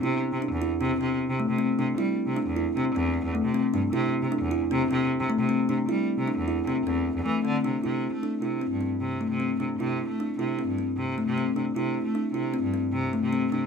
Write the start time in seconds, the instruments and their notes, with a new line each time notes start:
0.02 cello C3, kalimba E4
0.32 cello C3
0.42 kalimba D4
0.52 cello E2
0.62 kalimba E4
0.81 cello C3, kalimba C4
1.00 cello C3, kalimba C4
1.29 cello C3
1.40 kalimba A3
1.50 cello C3
1.58 kalimba C4
1.79 cello C3, kalimba D4
1.98 cello G3, kalimba E4
2.27 cello C3
2.36 kalimba D4
2.47 cello E2
2.56 kalimba E4
2.76 cello C3, kalimba C4
2.95 cello E2, kalimba C4
3.25 cello E2
3.35 kalimba A3
3.45 cello C3
3.54 kalimba C4
3.73 cello G2, kalimba D4
3.93 cello C3, kalimba E4
4.22 cello C3
4.32 kalimba D4
4.42 cello E2
4.51 kalimba E4
4.71 cello C3, kalimba C4
4.91 cello C3, kalimba C4
5.20 cello C3
5.30 kalimba A3
5.40 cello C3
5.49 kalimba C4
5.69 cello C3, kalimba D4
5.89 cello G3, kalimba E4
6.18 cello C3
6.28 kalimba D4
6.38 cello E2
6.48 kalimba E4
6.67 cello C3, kalimba C4
6.86 cello E2, kalimba C4
7.15 cello E2
7.26 cello E3, kalimba A3
7.45 cello D3, kalimba C4
7.64 cello C3, kalimba D4
7.84 cello C3, kalimba E4
8.13 cello A3
8.23 kalimba D4
8.42 cello C3, kalimba E4
8.61 kalimba C4
8.71 cello G2
8.81 kalimba C4
9.01 cello C3
9.21 kalimba A3
9.30 cello C3
9.40 kalimba C4
9.59 cello C3, kalimba D4
9.79 cello C3, kalimba E4
10.08 cello A3
10.20 kalimba D4
10.39 cello C3, kalimba E4
10.59 kalimba C4
10.68 cello G2
10.78 kalimba C4
10.97 cello C3
11.18 kalimba A3
11.27 cello C3
11.38 kalimba C4
11.56 cello C3, kalimba D4
11.75 cello C3, kalimba E4
12.05 cello A3
12.15 kalimba D4
12.33 cello C3, kalimba E4
12.54 kalimba C4
12.63 cello G2
12.74 kalimba C4
12.92 cello C3
13.13 kalimba A3
13.22 cello C3
13.33 kalimba C4
13.52 cello C3, kalimba D4